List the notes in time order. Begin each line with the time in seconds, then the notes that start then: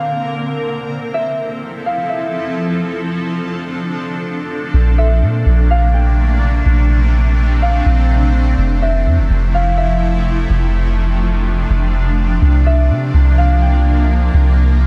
Already playing: D3 A#3 C4 A#4 F5
0.90 F3 E4 A4
1.14 E5
1.86 F5
2.09 E5
2.81 D4
4.73 A#1 C3 A3 A#3 D4
4.98 E5
5.22 A#2
5.46 A#1
5.71 F5
5.94 G5
6.66 A#1 C4
7.62 F5
7.86 A#1
8.58 F1 C3 F3 E4
8.82 E5
9.06 F2
9.18 F1
9.30 F1
9.54 F5
9.77 E5
10.50 F1 D4
11.70 F1
12.42 C2 A#3
12.66 E5
12.90 C3
13.14 C2
13.38 F5
13.62 G5
14.34 C2 E3